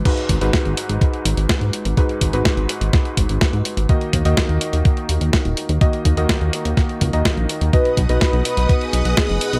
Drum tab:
CC |x---------------|----------------|----------------|----------------|
HH |xxxxxxxxxxxxxxxx|xxxxxxxxxxxxxxxx|xxxxxxxxxxxxxxxx|xxxxxxxxxxxxxxxx|
SD |----o-------o---|----o---o---o---|----o-------o---|----o---o---o---|
BD |o-o-o---o---o---|o-o-o---o-o-o---|o-o-o---o---o---|o-o-o---o-o-o---|

CC |----------------|
HH |xxxxxxxxxxxxxxxx|
SD |----o-------o---|
BD |o-o-o---o---o---|